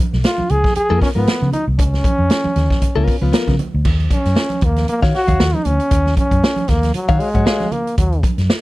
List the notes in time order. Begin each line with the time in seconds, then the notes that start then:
0.13 B1, snare, high conga
0.24 F4, snare, closed hi-hat
0.38 muted fingered electric bass stroke, muted conga, high conga
0.49 C#2 G#4, closed hi-hat, low conga
0.64 kick, snare, high conga
0.75 G#4, muted fingered electric bass stroke, closed hi-hat
0.89 F2 B3 F4 A#4, muted conga
1.02 C#4, kick, snare, open hi-hat
1.15 G#2 B3 F4 A#4, high conga
1.27 snare, closed hi-hat
1.42 C#3, muted conga, high conga
1.53 D#4, closed hi-hat, low conga
1.67 C2
1.79 C#2 C#4, kick, closed hi-hat, muted conga, low conga
1.94 snare, muted conga
2.04 kick, closed hi-hat, high conga
2.18 F2, high conga
2.30 snare, closed hi-hat
2.44 muted fingered electric bass stroke, muted conga, high conga
2.56 D#2, snare, closed hi-hat, low conga
2.70 kick, snare, high conga
2.82 muted fingered electric bass stroke, kick, closed hi-hat
2.95 C#2 B3 F4 A#4, muted conga
3.08 kick, open hi-hat
3.21 C#2 B3 F4 B4, high conga
3.33 B3 F4 A#4, snare, closed hi-hat
3.48 C#3, kick, snare, muted conga, high conga
3.59 closed hi-hat, low conga
3.74 D2
3.85 D#2, kick, crash, muted conga, low conga
4.00 closed hi-hat, muted conga
4.10 C#4, kick, closed hi-hat, high conga
4.25 F#2, snare, closed hi-hat
4.36 snare, muted conga
4.50 closed hi-hat, high conga
4.61 D#2 A#3, kick, closed hi-hat, low conga
4.76 snare, closed hi-hat, high conga
4.88 A#3, muted fingered electric bass stroke, closed hi-hat
5.01 D#3 F#4 C#5 F5, kick, snare, muted conga
5.14 F#4, snare, open hi-hat
5.27 D#2 F#4 C#5 F5, kick, closed hi-hat, high conga
5.40 D#2, snare
5.54 D#4, closed hi-hat, muted conga, high conga
5.65 D2 C#4, closed hi-hat, low conga
5.80 closed hi-hat
5.91 D#2, kick, closed hi-hat, muted conga, low conga
6.06 snare, muted conga
6.17 C#4, kick, closed hi-hat, high conga
6.31 F#2, kick, closed hi-hat
6.43 snare, muted conga
6.56 closed hi-hat, muted conga, high conga
6.68 D#2 A#3, kick, snare, closed hi-hat, low conga
6.83 snare, closed hi-hat, high conga
6.94 F#3, muted fingered electric bass stroke, closed hi-hat
7.08 D#3 F#4 C#5 F5, kick, closed hi-hat, muted conga
7.20 G#3, open hi-hat
7.34 G#2 F#4 C#5 F#5, kick, closed hi-hat, high conga
7.45 F#4 C#5 F5, snare, muted conga
7.60 snare, closed hi-hat, high conga
7.72 A#3, closed hi-hat, low conga
7.87 closed hi-hat
7.98 D#2 F#3, kick, closed hi-hat, low conga
8.12 closed hi-hat
8.23 kick, closed hi-hat, high conga
8.38 F#2, snare, closed hi-hat
8.50 snare